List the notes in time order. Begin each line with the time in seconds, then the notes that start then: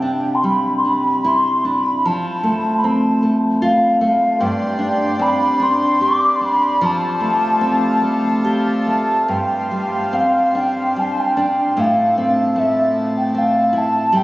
Already playing: C3 D4 G5
0.02 D4
0.34 C6
0.44 G3 B5
0.77 C6
0.85 D4 B5
1.24 E4 C6
1.65 D4 B5
2.05 F3 A5
2.43 A3
2.77 B5
2.84 C4 A5
3.23 A3
3.62 F4 F5
4.01 A3 F5
4.38 G2 G3 D4 C5 G5
4.79 D4
5.19 C4 B5
5.60 D4 C6
6.01 G4 D6
6.35 C6
6.41 D4 B5
6.81 F3 F4 A4 A5
7.20 A3
7.61 C4
8.02 A3
8.45 G4
8.87 A3 A5
9.28 G2 G3 F4 C5 G5
9.71 G3
10.13 C4 F5
10.55 D4 G5
10.96 G3 A5
11.20 G5
11.37 D4
11.76 A2 E3 F3 A4 F5
12.18 C4 F5
12.56 A3 E5
13.17 G5
13.35 C4 F5
13.73 E4
13.77 A5
14.12 G2 C3 E3 G3 B4
14.16 G5